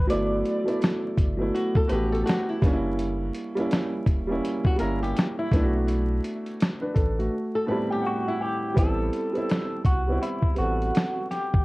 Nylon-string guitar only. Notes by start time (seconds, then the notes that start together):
1.54 F#4
1.76 A4
1.89 B4
2.12 A4
2.26 F#4
2.49 E4
4.66 F#4
4.79 A#4
5.03 G4
5.39 E4
7.55 A4
7.68 B4
7.92 G4
8.28 E4